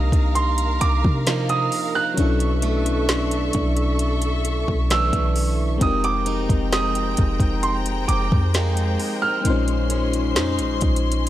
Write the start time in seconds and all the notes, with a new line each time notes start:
Already playing: C2 C3 F3 A#3 D4 D#4 G4 A#4 F5 A#5 D#6
0.12 C2, kick, closed hi-hat
0.35 C6, closed hi-hat
0.58 closed hi-hat
0.81 C2 D6, closed hi-hat
1.05 C3, kick
1.27 F3 A#3 D#4, snare, closed hi-hat
1.49 D#6, closed hi-hat
1.72 open hi-hat
1.95 F#6
2.14 B1 B2 F#3 C#4 D4 A4 E5 C#6, closed hi-hat
2.18 D4 E4 A4
2.40 closed hi-hat
2.62 A3, closed hi-hat
2.86 closed hi-hat
3.09 D4, snare, closed hi-hat
3.31 closed hi-hat
3.53 B1, kick, closed hi-hat
3.77 closed hi-hat
3.99 closed hi-hat
4.22 closed hi-hat
4.45 closed hi-hat
4.68 B1, kick
4.90 E3 A3 D4 E6, snare, closed hi-hat
5.13 B1, kick, closed hi-hat
5.36 open hi-hat
5.78 F1 G#3 C4 C5 G5, kick, closed hi-hat
5.82 G#3 D#4 G4 G#4 A#5 D#6
5.86 A#4
6.04 D6, closed hi-hat
6.26 D#4, closed hi-hat
6.49 F1, kick, closed hi-hat
6.72 G#4 D#6, snare, closed hi-hat
6.95 closed hi-hat
7.17 F1, kick, closed hi-hat
7.40 F1, kick, closed hi-hat
7.63 C6, closed hi-hat
7.86 closed hi-hat
8.08 F1 D6, closed hi-hat
8.32 F2, kick
8.54 A#3 D#4 G#4, snare, closed hi-hat
8.77 closed hi-hat
9.00 open hi-hat
9.22 F6
9.41 A#1 A#2 G#3 C4 C#4 C6, closed hi-hat
9.46 D#4 F4
9.50 C#4 C5
9.68 closed hi-hat
9.90 C#4, closed hi-hat
10.13 closed hi-hat
10.36 F2 D#4, snare, closed hi-hat
10.59 A#1, closed hi-hat
10.81 A#1, kick, closed hi-hat, open hi-hat
10.96 closed hi-hat
11.12 closed hi-hat